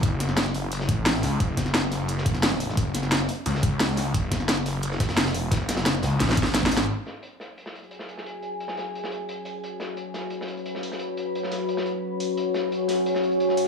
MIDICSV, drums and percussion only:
0, 0, Header, 1, 2, 480
1, 0, Start_track
1, 0, Tempo, 342857
1, 43, Time_signature, 4, 2, 24, 8
1, 19149, End_track
2, 0, Start_track
2, 0, Title_t, "Drums"
2, 43, Note_on_c, 9, 36, 127
2, 43, Note_on_c, 9, 42, 77
2, 52, Note_off_c, 9, 42, 0
2, 52, Note_on_c, 9, 42, 81
2, 183, Note_off_c, 9, 36, 0
2, 192, Note_off_c, 9, 42, 0
2, 283, Note_on_c, 9, 40, 36
2, 283, Note_on_c, 9, 42, 88
2, 287, Note_off_c, 9, 42, 0
2, 287, Note_on_c, 9, 42, 65
2, 403, Note_off_c, 9, 40, 0
2, 403, Note_on_c, 9, 40, 33
2, 427, Note_off_c, 9, 42, 0
2, 512, Note_on_c, 9, 38, 106
2, 523, Note_off_c, 9, 38, 0
2, 523, Note_on_c, 9, 38, 127
2, 523, Note_on_c, 9, 42, 80
2, 528, Note_off_c, 9, 42, 0
2, 528, Note_on_c, 9, 42, 78
2, 543, Note_off_c, 9, 40, 0
2, 643, Note_on_c, 9, 40, 35
2, 645, Note_off_c, 9, 38, 0
2, 645, Note_on_c, 9, 38, 50
2, 668, Note_off_c, 9, 42, 0
2, 763, Note_on_c, 9, 46, 82
2, 770, Note_on_c, 9, 42, 64
2, 783, Note_off_c, 9, 40, 0
2, 785, Note_off_c, 9, 38, 0
2, 903, Note_off_c, 9, 46, 0
2, 910, Note_off_c, 9, 42, 0
2, 1003, Note_on_c, 9, 42, 75
2, 1015, Note_off_c, 9, 42, 0
2, 1015, Note_on_c, 9, 42, 97
2, 1122, Note_on_c, 9, 38, 58
2, 1155, Note_off_c, 9, 42, 0
2, 1241, Note_on_c, 9, 42, 67
2, 1243, Note_off_c, 9, 42, 0
2, 1243, Note_on_c, 9, 36, 110
2, 1243, Note_on_c, 9, 42, 90
2, 1262, Note_off_c, 9, 38, 0
2, 1383, Note_off_c, 9, 36, 0
2, 1383, Note_off_c, 9, 42, 0
2, 1483, Note_on_c, 9, 38, 124
2, 1483, Note_on_c, 9, 42, 75
2, 1623, Note_off_c, 9, 38, 0
2, 1623, Note_off_c, 9, 42, 0
2, 1721, Note_on_c, 9, 42, 73
2, 1723, Note_on_c, 9, 38, 38
2, 1723, Note_on_c, 9, 46, 76
2, 1861, Note_off_c, 9, 42, 0
2, 1863, Note_off_c, 9, 38, 0
2, 1863, Note_off_c, 9, 46, 0
2, 1961, Note_on_c, 9, 42, 96
2, 1963, Note_off_c, 9, 42, 0
2, 1963, Note_on_c, 9, 36, 120
2, 1963, Note_on_c, 9, 42, 77
2, 2103, Note_off_c, 9, 36, 0
2, 2103, Note_off_c, 9, 42, 0
2, 2202, Note_on_c, 9, 38, 56
2, 2203, Note_on_c, 9, 36, 63
2, 2203, Note_on_c, 9, 40, 35
2, 2203, Note_on_c, 9, 42, 86
2, 2204, Note_off_c, 9, 42, 0
2, 2204, Note_on_c, 9, 42, 65
2, 2323, Note_off_c, 9, 40, 0
2, 2323, Note_on_c, 9, 40, 33
2, 2342, Note_off_c, 9, 38, 0
2, 2343, Note_off_c, 9, 36, 0
2, 2344, Note_off_c, 9, 42, 0
2, 2433, Note_on_c, 9, 42, 73
2, 2440, Note_on_c, 9, 38, 116
2, 2443, Note_off_c, 9, 38, 0
2, 2443, Note_off_c, 9, 42, 0
2, 2443, Note_on_c, 9, 38, 126
2, 2443, Note_on_c, 9, 42, 80
2, 2463, Note_off_c, 9, 40, 0
2, 2563, Note_on_c, 9, 40, 34
2, 2583, Note_off_c, 9, 38, 0
2, 2583, Note_off_c, 9, 42, 0
2, 2678, Note_on_c, 9, 38, 47
2, 2683, Note_on_c, 9, 46, 84
2, 2687, Note_on_c, 9, 42, 65
2, 2703, Note_off_c, 9, 40, 0
2, 2818, Note_off_c, 9, 38, 0
2, 2823, Note_off_c, 9, 46, 0
2, 2827, Note_off_c, 9, 42, 0
2, 2916, Note_on_c, 9, 42, 83
2, 2923, Note_off_c, 9, 42, 0
2, 2923, Note_on_c, 9, 42, 76
2, 3046, Note_on_c, 9, 38, 60
2, 3063, Note_off_c, 9, 42, 0
2, 3163, Note_on_c, 9, 36, 105
2, 3163, Note_on_c, 9, 42, 92
2, 3166, Note_off_c, 9, 42, 0
2, 3166, Note_on_c, 9, 42, 74
2, 3186, Note_off_c, 9, 38, 0
2, 3283, Note_on_c, 9, 40, 33
2, 3285, Note_off_c, 9, 42, 0
2, 3285, Note_on_c, 9, 42, 42
2, 3303, Note_off_c, 9, 36, 0
2, 3403, Note_off_c, 9, 42, 0
2, 3403, Note_on_c, 9, 38, 120
2, 3403, Note_on_c, 9, 42, 75
2, 3406, Note_off_c, 9, 42, 0
2, 3406, Note_on_c, 9, 42, 81
2, 3407, Note_off_c, 9, 38, 0
2, 3407, Note_on_c, 9, 38, 114
2, 3423, Note_off_c, 9, 40, 0
2, 3529, Note_off_c, 9, 38, 0
2, 3529, Note_on_c, 9, 38, 46
2, 3546, Note_off_c, 9, 42, 0
2, 3643, Note_on_c, 9, 46, 78
2, 3655, Note_on_c, 9, 42, 73
2, 3669, Note_off_c, 9, 38, 0
2, 3768, Note_on_c, 9, 38, 43
2, 3783, Note_off_c, 9, 46, 0
2, 3795, Note_off_c, 9, 42, 0
2, 3883, Note_on_c, 9, 36, 123
2, 3883, Note_on_c, 9, 42, 81
2, 3884, Note_off_c, 9, 42, 0
2, 3884, Note_on_c, 9, 42, 99
2, 3908, Note_off_c, 9, 38, 0
2, 4023, Note_off_c, 9, 36, 0
2, 4024, Note_off_c, 9, 42, 0
2, 4123, Note_on_c, 9, 40, 36
2, 4123, Note_on_c, 9, 42, 96
2, 4127, Note_off_c, 9, 42, 0
2, 4127, Note_on_c, 9, 42, 69
2, 4243, Note_off_c, 9, 40, 0
2, 4243, Note_on_c, 9, 40, 33
2, 4267, Note_off_c, 9, 42, 0
2, 4362, Note_on_c, 9, 38, 122
2, 4363, Note_off_c, 9, 38, 0
2, 4363, Note_on_c, 9, 38, 118
2, 4363, Note_on_c, 9, 42, 83
2, 4370, Note_off_c, 9, 42, 0
2, 4370, Note_on_c, 9, 42, 83
2, 4383, Note_off_c, 9, 40, 0
2, 4481, Note_off_c, 9, 38, 0
2, 4481, Note_on_c, 9, 38, 45
2, 4483, Note_on_c, 9, 40, 34
2, 4510, Note_off_c, 9, 42, 0
2, 4601, Note_on_c, 9, 42, 65
2, 4603, Note_on_c, 9, 46, 84
2, 4621, Note_off_c, 9, 38, 0
2, 4623, Note_off_c, 9, 40, 0
2, 4741, Note_off_c, 9, 42, 0
2, 4743, Note_off_c, 9, 46, 0
2, 4839, Note_on_c, 9, 42, 98
2, 4843, Note_off_c, 9, 42, 0
2, 4843, Note_on_c, 9, 42, 79
2, 4969, Note_on_c, 9, 38, 64
2, 4983, Note_off_c, 9, 42, 0
2, 5082, Note_on_c, 9, 36, 103
2, 5083, Note_on_c, 9, 42, 93
2, 5091, Note_off_c, 9, 42, 0
2, 5091, Note_on_c, 9, 42, 67
2, 5109, Note_off_c, 9, 38, 0
2, 5222, Note_off_c, 9, 36, 0
2, 5231, Note_off_c, 9, 42, 0
2, 5318, Note_on_c, 9, 38, 127
2, 5322, Note_off_c, 9, 38, 0
2, 5322, Note_on_c, 9, 38, 115
2, 5322, Note_on_c, 9, 42, 81
2, 5326, Note_off_c, 9, 42, 0
2, 5326, Note_on_c, 9, 42, 93
2, 5462, Note_off_c, 9, 38, 0
2, 5466, Note_off_c, 9, 42, 0
2, 5554, Note_on_c, 9, 42, 75
2, 5562, Note_on_c, 9, 38, 35
2, 5562, Note_on_c, 9, 46, 84
2, 5694, Note_off_c, 9, 42, 0
2, 5702, Note_off_c, 9, 38, 0
2, 5702, Note_off_c, 9, 46, 0
2, 5802, Note_on_c, 9, 36, 114
2, 5802, Note_on_c, 9, 42, 102
2, 5803, Note_off_c, 9, 42, 0
2, 5803, Note_on_c, 9, 42, 83
2, 5942, Note_off_c, 9, 36, 0
2, 5943, Note_off_c, 9, 42, 0
2, 6039, Note_on_c, 9, 38, 55
2, 6041, Note_on_c, 9, 42, 72
2, 6042, Note_off_c, 9, 42, 0
2, 6042, Note_on_c, 9, 36, 58
2, 6042, Note_on_c, 9, 40, 35
2, 6042, Note_on_c, 9, 42, 97
2, 6163, Note_off_c, 9, 40, 0
2, 6163, Note_on_c, 9, 40, 33
2, 6179, Note_off_c, 9, 38, 0
2, 6182, Note_off_c, 9, 36, 0
2, 6182, Note_off_c, 9, 42, 0
2, 6276, Note_on_c, 9, 38, 110
2, 6280, Note_on_c, 9, 42, 85
2, 6283, Note_off_c, 9, 38, 0
2, 6283, Note_off_c, 9, 42, 0
2, 6283, Note_on_c, 9, 38, 115
2, 6283, Note_on_c, 9, 42, 87
2, 6303, Note_off_c, 9, 40, 0
2, 6403, Note_on_c, 9, 40, 35
2, 6423, Note_off_c, 9, 38, 0
2, 6423, Note_off_c, 9, 42, 0
2, 6515, Note_on_c, 9, 38, 46
2, 6522, Note_on_c, 9, 42, 70
2, 6523, Note_on_c, 9, 46, 83
2, 6543, Note_off_c, 9, 40, 0
2, 6655, Note_off_c, 9, 38, 0
2, 6662, Note_off_c, 9, 42, 0
2, 6663, Note_off_c, 9, 46, 0
2, 6753, Note_on_c, 9, 42, 86
2, 6763, Note_off_c, 9, 42, 0
2, 6763, Note_on_c, 9, 42, 82
2, 6883, Note_on_c, 9, 38, 56
2, 6903, Note_off_c, 9, 42, 0
2, 7002, Note_on_c, 9, 36, 105
2, 7003, Note_on_c, 9, 42, 93
2, 7005, Note_off_c, 9, 38, 0
2, 7005, Note_on_c, 9, 38, 108
2, 7008, Note_off_c, 9, 42, 0
2, 7008, Note_on_c, 9, 42, 83
2, 7123, Note_on_c, 9, 40, 34
2, 7124, Note_off_c, 9, 38, 0
2, 7124, Note_on_c, 9, 38, 110
2, 7125, Note_off_c, 9, 42, 0
2, 7125, Note_on_c, 9, 42, 76
2, 7142, Note_off_c, 9, 36, 0
2, 7238, Note_off_c, 9, 42, 0
2, 7238, Note_on_c, 9, 42, 86
2, 7243, Note_off_c, 9, 38, 0
2, 7243, Note_off_c, 9, 42, 0
2, 7243, Note_on_c, 9, 38, 114
2, 7243, Note_on_c, 9, 42, 87
2, 7251, Note_off_c, 9, 38, 0
2, 7251, Note_on_c, 9, 38, 97
2, 7263, Note_off_c, 9, 40, 0
2, 7358, Note_off_c, 9, 38, 0
2, 7358, Note_on_c, 9, 38, 99
2, 7363, Note_off_c, 9, 42, 0
2, 7363, Note_on_c, 9, 42, 81
2, 7474, Note_off_c, 9, 38, 0
2, 7474, Note_on_c, 9, 38, 49
2, 7478, Note_off_c, 9, 42, 0
2, 7478, Note_on_c, 9, 42, 56
2, 7482, Note_on_c, 9, 46, 78
2, 7614, Note_off_c, 9, 38, 0
2, 7618, Note_off_c, 9, 42, 0
2, 7622, Note_off_c, 9, 46, 0
2, 7719, Note_on_c, 9, 38, 122
2, 7722, Note_on_c, 9, 36, 120
2, 7723, Note_on_c, 9, 42, 81
2, 7725, Note_off_c, 9, 42, 0
2, 7725, Note_on_c, 9, 42, 91
2, 7859, Note_off_c, 9, 38, 0
2, 7862, Note_off_c, 9, 36, 0
2, 7865, Note_off_c, 9, 42, 0
2, 7963, Note_on_c, 9, 40, 39
2, 7963, Note_on_c, 9, 42, 97
2, 7967, Note_on_c, 9, 38, 105
2, 7976, Note_off_c, 9, 42, 0
2, 7976, Note_on_c, 9, 42, 83
2, 8073, Note_off_c, 9, 38, 0
2, 8073, Note_on_c, 9, 38, 114
2, 8083, Note_off_c, 9, 40, 0
2, 8083, Note_on_c, 9, 40, 33
2, 8084, Note_off_c, 9, 42, 0
2, 8084, Note_on_c, 9, 42, 82
2, 8197, Note_off_c, 9, 38, 0
2, 8197, Note_on_c, 9, 38, 92
2, 8203, Note_off_c, 9, 38, 0
2, 8203, Note_off_c, 9, 42, 0
2, 8203, Note_on_c, 9, 38, 121
2, 8203, Note_on_c, 9, 42, 90
2, 8209, Note_off_c, 9, 42, 0
2, 8209, Note_on_c, 9, 42, 76
2, 8223, Note_off_c, 9, 40, 0
2, 8323, Note_on_c, 9, 40, 35
2, 8343, Note_off_c, 9, 38, 0
2, 8349, Note_off_c, 9, 42, 0
2, 8437, Note_on_c, 9, 38, 105
2, 8438, Note_on_c, 9, 42, 87
2, 8443, Note_on_c, 9, 46, 79
2, 8463, Note_off_c, 9, 40, 0
2, 8577, Note_off_c, 9, 38, 0
2, 8578, Note_off_c, 9, 42, 0
2, 8583, Note_off_c, 9, 46, 0
2, 8683, Note_on_c, 9, 38, 69
2, 8683, Note_on_c, 9, 42, 83
2, 8684, Note_off_c, 9, 42, 0
2, 8684, Note_on_c, 9, 42, 67
2, 8688, Note_off_c, 9, 38, 0
2, 8688, Note_on_c, 9, 38, 44
2, 8793, Note_off_c, 9, 42, 0
2, 8793, Note_on_c, 9, 42, 80
2, 8804, Note_off_c, 9, 38, 0
2, 8804, Note_on_c, 9, 38, 110
2, 8843, Note_off_c, 9, 38, 0
2, 8843, Note_on_c, 9, 38, 74
2, 8922, Note_off_c, 9, 42, 0
2, 8922, Note_on_c, 9, 36, 105
2, 8922, Note_on_c, 9, 42, 98
2, 8983, Note_off_c, 9, 38, 0
2, 9002, Note_on_c, 9, 38, 78
2, 9039, Note_off_c, 9, 42, 0
2, 9039, Note_on_c, 9, 42, 61
2, 9055, Note_off_c, 9, 38, 0
2, 9055, Note_on_c, 9, 38, 47
2, 9062, Note_off_c, 9, 36, 0
2, 9161, Note_off_c, 9, 38, 0
2, 9161, Note_off_c, 9, 42, 0
2, 9161, Note_on_c, 9, 38, 109
2, 9161, Note_on_c, 9, 42, 79
2, 9163, Note_off_c, 9, 38, 0
2, 9163, Note_off_c, 9, 42, 0
2, 9163, Note_on_c, 9, 38, 90
2, 9163, Note_on_c, 9, 42, 84
2, 9283, Note_on_c, 9, 36, 59
2, 9303, Note_off_c, 9, 38, 0
2, 9303, Note_off_c, 9, 42, 0
2, 9322, Note_on_c, 9, 38, 98
2, 9393, Note_on_c, 9, 42, 61
2, 9398, Note_off_c, 9, 38, 0
2, 9398, Note_on_c, 9, 38, 41
2, 9403, Note_on_c, 9, 46, 77
2, 9423, Note_off_c, 9, 36, 0
2, 9483, Note_off_c, 9, 38, 0
2, 9483, Note_on_c, 9, 38, 101
2, 9513, Note_off_c, 9, 42, 0
2, 9513, Note_on_c, 9, 42, 40
2, 9543, Note_off_c, 9, 46, 0
2, 9623, Note_off_c, 9, 38, 0
2, 9643, Note_off_c, 9, 42, 0
2, 9643, Note_on_c, 9, 42, 86
2, 9783, Note_off_c, 9, 42, 0
2, 9888, Note_on_c, 9, 42, 63
2, 9893, Note_on_c, 9, 38, 52
2, 10028, Note_off_c, 9, 42, 0
2, 10033, Note_off_c, 9, 38, 0
2, 10116, Note_on_c, 9, 42, 84
2, 10256, Note_off_c, 9, 42, 0
2, 10359, Note_on_c, 9, 38, 42
2, 10363, Note_on_c, 9, 46, 71
2, 10370, Note_on_c, 9, 42, 62
2, 10499, Note_off_c, 9, 38, 0
2, 10503, Note_off_c, 9, 46, 0
2, 10510, Note_off_c, 9, 42, 0
2, 10607, Note_on_c, 9, 42, 77
2, 10723, Note_on_c, 9, 38, 51
2, 10747, Note_off_c, 9, 42, 0
2, 10853, Note_on_c, 9, 42, 68
2, 10863, Note_off_c, 9, 38, 0
2, 10960, Note_off_c, 9, 42, 0
2, 10960, Note_on_c, 9, 42, 38
2, 11073, Note_off_c, 9, 42, 0
2, 11073, Note_on_c, 9, 42, 77
2, 11191, Note_on_c, 9, 38, 45
2, 11213, Note_off_c, 9, 42, 0
2, 11320, Note_on_c, 9, 42, 64
2, 11323, Note_on_c, 9, 46, 69
2, 11331, Note_off_c, 9, 38, 0
2, 11445, Note_on_c, 9, 38, 44
2, 11460, Note_off_c, 9, 42, 0
2, 11463, Note_off_c, 9, 46, 0
2, 11567, Note_on_c, 9, 42, 82
2, 11585, Note_off_c, 9, 38, 0
2, 11707, Note_off_c, 9, 42, 0
2, 11795, Note_on_c, 9, 42, 63
2, 11935, Note_off_c, 9, 42, 0
2, 12044, Note_on_c, 9, 42, 79
2, 12152, Note_on_c, 9, 38, 48
2, 12184, Note_off_c, 9, 42, 0
2, 12279, Note_on_c, 9, 42, 64
2, 12283, Note_on_c, 9, 46, 70
2, 12289, Note_off_c, 9, 38, 0
2, 12289, Note_on_c, 9, 38, 43
2, 12419, Note_off_c, 9, 42, 0
2, 12423, Note_off_c, 9, 46, 0
2, 12429, Note_off_c, 9, 38, 0
2, 12534, Note_on_c, 9, 42, 81
2, 12651, Note_on_c, 9, 38, 53
2, 12674, Note_off_c, 9, 42, 0
2, 12765, Note_on_c, 9, 42, 72
2, 12791, Note_off_c, 9, 38, 0
2, 12905, Note_off_c, 9, 42, 0
2, 13002, Note_on_c, 9, 42, 92
2, 13142, Note_off_c, 9, 42, 0
2, 13231, Note_on_c, 9, 42, 71
2, 13243, Note_on_c, 9, 46, 70
2, 13371, Note_off_c, 9, 42, 0
2, 13383, Note_off_c, 9, 46, 0
2, 13490, Note_on_c, 9, 42, 79
2, 13630, Note_off_c, 9, 42, 0
2, 13718, Note_on_c, 9, 38, 56
2, 13723, Note_on_c, 9, 42, 59
2, 13858, Note_off_c, 9, 38, 0
2, 13863, Note_off_c, 9, 42, 0
2, 13956, Note_on_c, 9, 42, 74
2, 14096, Note_off_c, 9, 42, 0
2, 14196, Note_on_c, 9, 42, 59
2, 14198, Note_on_c, 9, 38, 49
2, 14203, Note_on_c, 9, 46, 70
2, 14336, Note_off_c, 9, 42, 0
2, 14338, Note_off_c, 9, 38, 0
2, 14343, Note_off_c, 9, 46, 0
2, 14423, Note_on_c, 9, 42, 80
2, 14563, Note_off_c, 9, 42, 0
2, 14574, Note_on_c, 9, 38, 50
2, 14674, Note_on_c, 9, 42, 71
2, 14714, Note_off_c, 9, 38, 0
2, 14799, Note_off_c, 9, 42, 0
2, 14799, Note_on_c, 9, 42, 39
2, 14919, Note_off_c, 9, 42, 0
2, 14919, Note_on_c, 9, 42, 83
2, 15049, Note_on_c, 9, 38, 43
2, 15059, Note_off_c, 9, 42, 0
2, 15163, Note_on_c, 9, 46, 74
2, 15165, Note_on_c, 9, 42, 61
2, 15189, Note_off_c, 9, 38, 0
2, 15284, Note_on_c, 9, 38, 44
2, 15303, Note_off_c, 9, 46, 0
2, 15305, Note_off_c, 9, 42, 0
2, 15389, Note_on_c, 9, 42, 86
2, 15424, Note_off_c, 9, 38, 0
2, 15529, Note_off_c, 9, 42, 0
2, 15641, Note_on_c, 9, 42, 70
2, 15781, Note_off_c, 9, 42, 0
2, 15893, Note_on_c, 9, 42, 73
2, 16008, Note_on_c, 9, 38, 40
2, 16033, Note_off_c, 9, 42, 0
2, 16118, Note_on_c, 9, 42, 68
2, 16121, Note_off_c, 9, 38, 0
2, 16121, Note_on_c, 9, 38, 40
2, 16123, Note_on_c, 9, 46, 75
2, 16258, Note_off_c, 9, 42, 0
2, 16261, Note_off_c, 9, 38, 0
2, 16263, Note_off_c, 9, 46, 0
2, 16361, Note_on_c, 9, 42, 79
2, 16482, Note_on_c, 9, 38, 57
2, 16501, Note_off_c, 9, 42, 0
2, 16600, Note_on_c, 9, 42, 70
2, 16622, Note_off_c, 9, 38, 0
2, 16740, Note_off_c, 9, 42, 0
2, 17079, Note_on_c, 9, 42, 65
2, 17083, Note_on_c, 9, 46, 74
2, 17219, Note_off_c, 9, 42, 0
2, 17223, Note_off_c, 9, 46, 0
2, 17322, Note_on_c, 9, 42, 83
2, 17462, Note_off_c, 9, 42, 0
2, 17558, Note_on_c, 9, 42, 60
2, 17562, Note_on_c, 9, 38, 55
2, 17698, Note_off_c, 9, 42, 0
2, 17702, Note_off_c, 9, 38, 0
2, 17807, Note_on_c, 9, 42, 77
2, 17947, Note_off_c, 9, 42, 0
2, 18036, Note_on_c, 9, 38, 49
2, 18038, Note_on_c, 9, 42, 66
2, 18043, Note_on_c, 9, 46, 74
2, 18176, Note_off_c, 9, 38, 0
2, 18178, Note_off_c, 9, 42, 0
2, 18183, Note_off_c, 9, 46, 0
2, 18286, Note_on_c, 9, 42, 87
2, 18404, Note_on_c, 9, 38, 49
2, 18426, Note_off_c, 9, 42, 0
2, 18530, Note_on_c, 9, 42, 63
2, 18544, Note_off_c, 9, 38, 0
2, 18638, Note_off_c, 9, 42, 0
2, 18638, Note_on_c, 9, 42, 41
2, 18760, Note_off_c, 9, 42, 0
2, 18760, Note_on_c, 9, 42, 76
2, 18886, Note_on_c, 9, 38, 40
2, 18900, Note_off_c, 9, 42, 0
2, 19003, Note_on_c, 9, 46, 76
2, 19006, Note_on_c, 9, 42, 63
2, 19026, Note_off_c, 9, 38, 0
2, 19103, Note_on_c, 9, 38, 42
2, 19143, Note_off_c, 9, 46, 0
2, 19146, Note_off_c, 9, 42, 0
2, 19149, Note_off_c, 9, 38, 0
2, 19149, End_track
0, 0, End_of_file